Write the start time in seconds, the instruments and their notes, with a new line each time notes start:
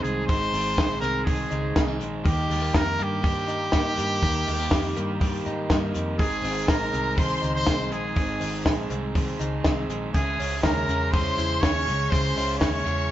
Already playing: clean electric guitar G#2 D#4, overdriven electric guitar D#3 G#3 C4 D#4 G#4, transistor combo organ G#3 C4 D#4 G#4
0.03 fingered electric bass C2, clean electric guitar G#3, trumpet G#4, hi-hat pedal, open hi-hat
0.27 fingered electric bass G#1, overdriven electric guitar G#2 D#3 G#3 C4 D#4 G#4, trumpet C5, kick, hi-hat pedal, open hi-hat
0.53 fingered electric bass G#1, clean electric guitar C4, hi-hat pedal, open hi-hat
0.78 fingered electric bass A#1, overdriven electric guitar G#3 C4 D#4 G#4, kick, snare, hi-hat pedal, open hi-hat
1.00 fingered electric bass C2, overdriven electric guitar C4 D#4 G#4, trumpet A#4, hi-hat pedal, open hi-hat
1.05 overdriven electric guitar G#3
1.24 overdriven electric guitar G#2 D#3 G#3 D#4, trumpet G#4, kick, hi-hat pedal, open hi-hat
1.29 overdriven electric guitar C4 G#4
1.51 fingered electric bass C#2, clean electric guitar D#4, hi-hat pedal, open hi-hat
1.76 fingered electric bass C2, overdriven electric guitar G#3 C4 D#4 G#4, clean electric guitar A#3, kick, snare, hi-hat pedal, open hi-hat
1.88 clean electric guitar C4
2.00 fingered electric bass A#1, clean electric guitar G#3, hi-hat pedal, open hi-hat
2.24 fingered electric bass D#2, overdriven electric guitar D#3 G3 A#3 D#4 G4, transistor combo organ G3 A#3 D#4 G4, trumpet G4, kick, hi-hat pedal, open hi-hat
2.49 fingered electric bass D#2, clean electric guitar G#3, hi-hat pedal, open hi-hat
2.62 clean electric guitar A#3
2.74 fingered electric bass F2, overdriven electric guitar G3 A#3 D#4 G4, trumpet A#4, kick, snare, hi-hat pedal, open hi-hat
2.99 fingered electric bass G2, overdriven electric guitar A#3 D#4 G4, trumpet G4, hi-hat pedal, open hi-hat
3.24 overdriven electric guitar D#3 G3 A#3 D#4 G4, kick, hi-hat pedal, open hi-hat
3.48 clean electric guitar D#4, hi-hat pedal, open hi-hat
3.71 fingered electric bass G#2, overdriven electric guitar G3 A#3 D#4 G4, kick, snare, hi-hat pedal, open hi-hat
3.97 fingered electric bass G2, clean electric guitar G3, hi-hat pedal, open hi-hat
4.22 fingered electric bass D#2, overdriven electric guitar D#3 G3 A#3 D#4 G4, kick, hi-hat pedal, open hi-hat
4.47 fingered electric bass D#2, clean electric guitar G#3, hi-hat pedal, open hi-hat
4.59 clean electric guitar A#3
4.70 fingered electric bass F2, overdriven electric guitar G3 A#3 D#4 G4, kick, snare, hi-hat pedal, open hi-hat
4.96 fingered electric bass G2, overdriven electric guitar A#3 D#4 G4, hi-hat pedal, open hi-hat
5.20 overdriven electric guitar D#3 G3 A#3 D#4 G4, kick, hi-hat pedal, open hi-hat
5.46 fingered electric bass G#2, clean electric guitar D#4, hi-hat pedal, open hi-hat
5.69 fingered electric bass G2, overdriven electric guitar G3 A#3 D#4 G4, kick, snare, hi-hat pedal, open hi-hat
5.94 fingered electric bass F2, clean electric guitar G3, hi-hat pedal, open hi-hat
6.18 fingered electric bass G#1, overdriven electric guitar G#2 D#3 G#3 C4 D#4 G#4, transistor combo organ G#3 C4 D#4 G#4, trumpet G#4, violin section G#5, kick, hi-hat pedal, open hi-hat
6.43 fingered electric bass G#1, clean electric guitar C4, hi-hat pedal, open hi-hat
6.67 fingered electric bass A#1, overdriven electric guitar G#3 C4 D#4 G#4, trumpet A#4, violin section A#5, kick, snare, hi-hat pedal, open hi-hat
6.92 fingered electric bass C2, overdriven electric guitar G#3 C4 D#4 G#4, hi-hat pedal, open hi-hat
7.17 overdriven electric guitar G#2 D#3 G#3 C4 D#4 G#4, trumpet C5, violin section C6, kick, hi-hat pedal, open hi-hat
7.42 fingered electric bass C#2, clean electric guitar D#4, hi-hat pedal, open hi-hat
7.54 trumpet C5, violin section C6
7.66 fingered electric bass C2, overdriven electric guitar G#3 C4 D#4 G#4, clean electric guitar A#3, kick, snare, hi-hat pedal, open hi-hat
7.78 clean electric guitar C4
7.91 fingered electric bass A#1, overdriven electric guitar G#3 C4 D#4 G#4, trumpet G#4, violin section G#5, hi-hat pedal, open hi-hat
8.16 fingered electric bass G#1, overdriven electric guitar G#2 D#3 G#3 C4 D#4 G#4, kick, hi-hat pedal, open hi-hat
8.40 fingered electric bass G#1, clean electric guitar C4, hi-hat pedal, open hi-hat
8.65 fingered electric bass A#1, overdriven electric guitar G#3 C4 D#4 G#4, kick, snare, hi-hat pedal, open hi-hat
8.90 fingered electric bass C2, overdriven electric guitar G#3 C4 D#4 G#4, hi-hat pedal, open hi-hat
9.15 overdriven electric guitar G#2 D#3 G#3 C4 D#4 G#4, kick, hi-hat pedal, open hi-hat
9.40 fingered electric bass C#2, clean electric guitar D#4, hi-hat pedal, open hi-hat
9.64 fingered electric bass C2, overdriven electric guitar G#3 C4 D#4 G#4, transistor combo organ D#5, kick, snare, hi-hat pedal, open hi-hat
9.89 fingered electric bass A#1, overdriven electric guitar G#3 C4 D#4 G#4, hi-hat pedal, open hi-hat
10.14 fingered electric bass C#2, overdriven electric guitar C#3 G#3 C#4 E4 G#4, transistor combo organ G#3 C#4 E4 G#4, trumpet G#4, violin section G#5, kick, hi-hat pedal, open hi-hat
10.39 fingered electric bass C#2, clean electric guitar C#4, hi-hat pedal, open hi-hat
10.62 fingered electric bass D#2, overdriven electric guitar G#3 C#4 E4 G#4, trumpet A#4, violin section A#5, kick, snare, hi-hat pedal, open hi-hat
10.88 fingered electric bass E2, overdriven electric guitar C#4 E4 G#4, hi-hat pedal, open hi-hat
11.12 overdriven electric guitar C#3 G#3 C#4 E4 G#4, trumpet C5, violin section C6, kick, hi-hat pedal, open hi-hat
11.38 fingered electric bass E2, clean electric guitar E4, hi-hat pedal, open hi-hat
11.61 fingered electric bass D#2, overdriven electric guitar G#3 C#4 E4, trumpet C#5, violin section C#6, kick, snare, hi-hat pedal, open hi-hat
11.65 overdriven electric guitar G#4
11.87 fingered electric bass C#2, clean electric guitar G#3, overdriven electric guitar E4 G#4, hi-hat pedal, open hi-hat
11.91 overdriven electric guitar C#4
12.09 fingered electric bass C#2, overdriven electric guitar C#3 G#3 C#4 E4, trumpet C5, violin section C6, kick, hi-hat pedal, open hi-hat
12.14 overdriven electric guitar G#4
12.35 fingered electric bass C#2, clean electric guitar C#4, hi-hat pedal, open hi-hat
12.58 fingered electric bass D#2, overdriven electric guitar G#3, trumpet C#5, violin section C#6, kick, snare, hi-hat pedal, open hi-hat
12.63 overdriven electric guitar C#4 E4 G#4
12.85 fingered electric bass E2, overdriven electric guitar C#4 E4 G#4, hi-hat pedal, open hi-hat